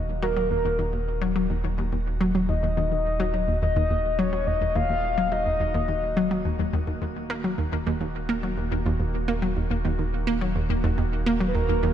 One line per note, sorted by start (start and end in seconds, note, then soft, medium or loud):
0.00 6.99 D#1 medium
0.00 11.94 D#3 medium
0.00 11.94 A#3 medium
0.00 11.94 F#4 medium
0.22 0.33 F#3 loud
0.22 0.49 A#4 loud
0.37 0.47 F#3 medium
0.51 0.58 D#2 medium
0.51 1.04 A#4 loud
0.65 0.69 D#2 medium
0.79 0.86 D#2 medium
0.93 0.97 D#2 medium
1.21 1.32 F#3 medium
1.36 1.46 F#3 medium
1.50 1.57 D#2 medium
1.64 1.68 D#2 medium
1.78 1.85 D#2 medium
1.92 1.97 D#2 medium
2.21 2.31 F#3 medium
2.35 2.45 F#3 medium
2.49 2.56 D#2 medium
2.49 3.58 D#5 loud
2.63 2.67 D#2 medium
2.77 2.84 D#2 medium
2.92 2.96 D#2 medium
3.20 3.30 F#3 loud
3.34 3.44 F#3 medium
3.48 3.55 D#2 medium
3.62 3.66 D#2 medium
3.62 4.20 D#5 loud
3.76 3.83 D#2 loud
3.91 3.95 D#2 medium
4.19 4.29 F#3 loud
4.19 4.48 C#5 medium
4.33 4.43 F#3 medium
4.47 4.54 D#2 medium
4.47 4.77 D#5 loud
4.61 4.66 D#2 medium
4.75 4.82 D#2 loud
4.75 5.34 F5 loud
4.90 4.94 D#2 medium
5.18 5.28 F#3 medium
5.32 5.42 F#3 medium
5.32 6.45 D#5 loud
5.46 5.53 D#2 medium
5.60 5.64 D#2 medium
5.74 5.81 D#2 loud
5.88 5.93 D#2 medium
6.17 6.27 F#3 medium
6.31 6.42 F#3 medium
6.45 6.52 D#2 medium
6.59 6.64 D#2 medium
6.73 6.80 D#2 medium
6.87 6.92 D#2 medium
7.02 11.94 D#1 medium
7.02 7.06 D#2 medium
7.30 7.41 A#3 medium
7.44 7.55 F#3 medium
7.58 7.65 D#2 medium
7.72 7.77 D#2 medium
7.87 7.94 D#2 loud
8.01 8.05 D#2 medium
8.29 8.40 A#3 loud
8.43 8.54 F#3 medium
8.57 8.64 D#2 medium
8.71 8.76 D#2 medium
8.86 8.93 D#2 loud
9.00 9.04 D#2 medium
9.28 9.39 A#3 medium
9.42 9.53 F#3 medium
9.56 9.63 D#2 medium
9.71 9.75 D#2 medium
9.85 9.92 D#2 medium
9.99 10.03 D#2 medium
10.27 10.38 A#3 loud
10.41 10.52 F#3 medium
10.56 10.63 D#2 medium
10.70 10.74 D#2 medium
10.84 10.91 D#2 medium
10.98 11.02 D#2 medium
11.26 11.37 A#3 loud
11.40 11.51 F#3 medium
11.48 11.56 B4 medium
11.55 11.62 D#2 medium
11.55 11.94 A#4 loud
11.69 11.73 D#2 medium
11.83 11.90 D#2 medium